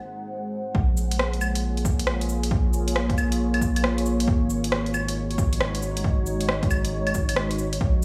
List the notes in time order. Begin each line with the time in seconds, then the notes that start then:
Already playing: G#3 G#4 C5 F#5
0.74 A#1 A#3 F4 G#4 C#5, kick
0.97 cabasa
1.11 closed hi-hat
1.19 cross-stick
1.33 closed hi-hat
1.41 cabasa, claves
1.55 closed hi-hat
1.77 closed hi-hat
1.85 kick, cabasa
1.99 closed hi-hat
2.07 cross-stick
2.21 closed hi-hat
2.29 cabasa
2.43 closed hi-hat
2.51 kick
2.73 cabasa
2.88 closed hi-hat
2.96 cross-stick
3.10 kick, closed hi-hat
3.18 cabasa, claves
3.32 closed hi-hat
3.54 closed hi-hat, claves
3.61 kick, cabasa
3.76 closed hi-hat, claves
3.84 cross-stick
3.98 closed hi-hat
4.06 cabasa
4.20 closed hi-hat
4.28 G#1 G#3 D#4 F#4, kick
4.50 cabasa
4.64 closed hi-hat
4.72 cross-stick
4.86 closed hi-hat
4.94 cabasa, claves
5.08 closed hi-hat
5.31 closed hi-hat
5.38 kick, cabasa
5.53 closed hi-hat
5.61 cross-stick
5.75 closed hi-hat
5.83 cabasa
5.97 closed hi-hat
6.04 kick
6.26 cabasa
6.41 closed hi-hat
6.49 cross-stick
6.63 kick, closed hi-hat
6.71 cabasa, claves
6.85 closed hi-hat
7.07 closed hi-hat, claves
7.14 kick, cabasa
7.29 closed hi-hat, claves
7.36 cross-stick
7.51 closed hi-hat
7.59 cabasa
7.73 closed hi-hat
7.81 A#1 A#3 F4 G#4, kick